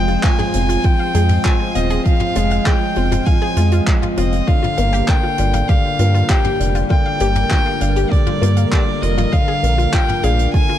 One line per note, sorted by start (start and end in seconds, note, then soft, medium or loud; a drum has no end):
0.00 0.17 F1 loud
0.00 0.24 F3 medium
0.00 1.14 G#3 loud
0.00 0.54 C4 medium
0.00 6.42 F4 medium
0.00 4.48 G#4 medium
0.00 6.42 C5 medium
0.00 6.01 F5 medium
0.00 0.25 G5 loud
0.08 0.23 F4 medium
0.08 closed hi-hat medium
0.23 0.52 F3 medium
0.23 0.34 F5 medium
0.23 0.86 G#5 loud
0.23 kick loud
0.23 clap medium
0.23 closed hi-hat medium
0.39 0.49 G#4 loud
0.39 mid tom medium
0.53 0.78 F1 medium
0.53 0.71 C4 medium
0.53 closed hi-hat medium
0.69 0.79 F4 medium
0.69 closed hi-hat medium
0.84 1.13 F3 medium
0.84 0.99 F4 medium
0.84 1.47 G5 loud
0.84 kick loud
0.84 closed hi-hat soft
0.99 1.09 F5 medium
1.14 1.38 F2 medium
1.14 1.43 G#3 medium
1.14 1.25 G#4 loud
1.14 closed hi-hat medium
1.29 closed hi-hat medium
1.29 mid tom medium
1.44 1.62 F3 medium
1.44 1.55 F4 medium
1.44 1.77 G#5 loud
1.44 kick loud
1.44 clap loud
1.44 closed hi-hat medium
1.60 1.74 F4 medium
1.75 1.99 D#1 medium
1.75 1.92 C4 medium
1.75 2.05 D#5 medium
1.75 1.85 F5 medium
1.75 closed hi-hat medium
1.90 2.00 G#4 loud
1.90 closed hi-hat medium
2.05 2.34 F3 medium
2.05 2.67 F5 loud
2.05 kick loud
2.05 closed hi-hat medium
2.20 2.31 F4 medium
2.20 mid tom medium
2.35 2.60 F1 loud
2.35 2.53 G#3 loud
2.35 2.50 F4 medium
2.35 closed hi-hat medium
2.50 2.61 F5 medium
2.50 closed hi-hat medium
2.65 2.95 F3 medium
2.65 2.76 G#4 loud
2.65 3.27 G5 loud
2.65 kick loud
2.65 clap medium
2.65 closed hi-hat medium
2.95 3.20 F1 medium
2.95 3.25 C4 medium
2.95 3.07 F4 medium
2.95 closed hi-hat medium
3.12 3.26 F4 medium
3.12 closed hi-hat medium
3.12 mid tom medium
3.26 3.56 F3 medium
3.26 3.37 F5 medium
3.26 3.87 G#5 medium
3.26 kick loud
3.26 closed hi-hat soft
3.42 3.52 G#4 loud
3.56 3.81 F2 medium
3.56 3.86 G#3 medium
3.56 3.71 F4 medium
3.56 closed hi-hat medium
3.71 3.82 F4 medium
3.71 closed hi-hat medium
3.87 4.16 F3 medium
3.87 3.97 F5 loud
3.87 kick loud
3.87 clap medium
3.87 closed hi-hat soft
4.02 4.12 F4 medium
4.02 mid tom medium
4.17 4.41 F1 medium
4.17 4.35 C4 medium
4.17 4.28 F4 medium
4.17 4.49 D#5 medium
4.17 closed hi-hat medium
4.32 closed hi-hat medium
4.47 4.76 D3 medium
4.47 9.33 G3 loud
4.47 4.58 F4 medium
4.47 5.10 F5 loud
4.47 kick loud
4.47 closed hi-hat soft
4.63 4.77 F4 medium
4.63 10.79 A#4 medium
4.63 mid tom medium
4.78 5.02 G1 loud
4.78 4.95 A#3 loud
4.78 4.88 F5 medium
4.78 closed hi-hat medium
4.93 5.03 G4 loud
4.93 closed hi-hat medium
5.08 5.37 D3 medium
5.08 5.70 G5 loud
5.08 kick loud
5.08 clap medium
5.08 closed hi-hat medium
5.23 5.34 F4 medium
5.38 5.63 G1 medium
5.38 5.68 D4 medium
5.38 5.53 F4 medium
5.38 closed hi-hat medium
5.53 5.64 F5 medium
5.53 closed hi-hat medium
5.53 mid tom medium
5.68 5.98 D3 medium
5.68 5.79 G4 loud
5.68 6.31 F5 loud
5.68 kick loud
5.68 closed hi-hat medium
5.99 6.23 G2 medium
5.99 6.28 A#3 medium
5.99 6.10 F4 medium
5.99 closed hi-hat medium
6.14 6.29 F4 medium
6.14 closed hi-hat medium
6.29 6.47 G4 loud
6.29 6.40 F5 medium
6.29 6.75 G5 loud
6.29 kick loud
6.29 clap medium
6.29 closed hi-hat medium
6.44 6.55 G4 loud
6.44 mid tom medium
6.60 6.84 F1 medium
6.60 6.77 D4 medium
6.60 closed hi-hat medium
6.75 6.85 F4 medium
6.75 closed hi-hat medium
6.90 7.19 D3 medium
6.90 7.05 F4 medium
6.90 8.13 G5 loud
6.90 kick loud
6.90 closed hi-hat soft
7.06 7.16 F5 medium
7.20 7.44 G1 loud
7.20 7.49 A#3 medium
7.20 7.31 G4 loud
7.20 closed hi-hat medium
7.35 closed hi-hat medium
7.35 mid tom medium
7.50 7.68 D3 medium
7.50 7.61 F4 medium
7.50 kick loud
7.50 clap medium
7.50 closed hi-hat soft
7.66 7.80 F4 medium
7.81 8.05 G1 medium
7.81 7.98 D4 medium
7.81 7.91 F5 medium
7.81 closed hi-hat medium
7.96 8.06 G4 loud
7.96 closed hi-hat medium
8.11 8.40 D3 medium
8.11 8.72 D5 loud
8.11 kick loud
8.11 closed hi-hat medium
8.26 8.37 F4 medium
8.26 mid tom medium
8.41 8.66 G2 medium
8.41 8.59 A#3 loud
8.41 8.56 F4 medium
8.41 closed hi-hat medium
8.56 8.67 F5 medium
8.56 closed hi-hat medium
8.72 9.01 D3 medium
8.72 8.82 G4 loud
8.72 9.03 D5 loud
8.72 kick loud
8.72 clap medium
9.02 9.26 F1 medium
9.02 9.31 D4 medium
9.02 9.13 F4 medium
9.02 9.33 D#5 loud
9.02 closed hi-hat medium
9.17 9.32 F4 medium
9.17 closed hi-hat medium
9.17 mid tom medium
9.32 9.62 D3 loud
9.32 10.79 A#3 medium
9.32 9.94 F5 loud
9.32 9.43 F5 medium
9.32 kick loud
9.32 closed hi-hat medium
9.48 9.58 G#4 loud
9.63 9.87 A#1 loud
9.63 9.92 A#3 medium
9.63 closed hi-hat medium
9.78 9.88 F4 medium
9.78 closed hi-hat medium
9.93 10.08 F4 medium
9.93 10.11 F4 loud
9.93 10.25 G5 loud
9.93 kick loud
9.93 clap medium
9.93 closed hi-hat soft
10.09 10.19 F5 medium
10.09 10.79 F5 medium
10.09 mid tom medium
10.23 10.47 A#1 medium
10.23 10.41 D4 medium
10.23 10.34 G#4 loud
10.23 10.53 F5 loud
10.23 closed hi-hat medium
10.39 closed hi-hat medium
10.53 10.79 D3 medium
10.53 10.64 F4 medium
10.53 10.79 G#5 loud
10.53 kick loud
10.53 closed hi-hat medium
10.69 10.79 F4 medium